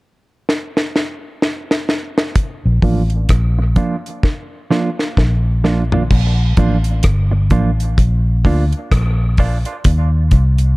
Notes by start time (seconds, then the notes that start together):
0.49 snare
0.77 snare
0.96 snare
1.42 snare
1.71 snare
1.89 snare
2.18 snare
2.36 kick, closed hi-hat
2.66 A#1
2.82 A1 F3 A#3 D4 F4, kick, open hi-hat
3.10 closed hi-hat
3.29 A#1, kick, cross-stick, closed hi-hat
3.59 muted clean electric guitar stroke
3.76 F3 A#3 D4 F4, kick, closed hi-hat
4.06 closed hi-hat
4.23 kick, snare
4.71 F3 A#3 D4 F4, snare
4.99 snare
5.17 A#1, kick, snare
5.64 F3 A#3 D4 F4, snare
5.92 F3 A#3 D4 F4, floor tom
6.10 A#1, kick, crash
6.57 A1 F3 A#3 D4 F4, kick, closed hi-hat
6.84 closed hi-hat
7.03 G1, kick, cross-stick, closed hi-hat
7.31 muted clean electric guitar stroke
7.50 A1 F3 A#3 D4 F4, kick, closed hi-hat
7.80 closed hi-hat
7.98 A#1, kick, closed hi-hat
8.45 D2 F3 A#3 D4 F4, kick, open hi-hat
8.72 closed hi-hat
8.92 A#1, kick, cross-stick, closed hi-hat
9.37 F3 A#3 D4 F4, kick, open hi-hat
9.65 F3 A#3 D4 F4, closed hi-hat
9.84 D#2, kick, closed hi-hat
10.31 C2, kick, closed hi-hat
10.58 closed hi-hat